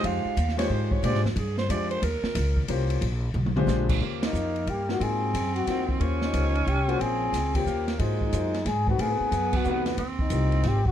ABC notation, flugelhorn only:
X:1
M:3/4
L:1/8
Q:"Swing" 1/4=181
K:Ebmix
V:1 name="Flugelhorn"
z6 | z6 | z6 | z6 |
z E3 G _G | A3 _G2 z | z E3 G _G | A3 G2 z |
z E3 A _G | A3 ^F2 z | z E3 G _G |]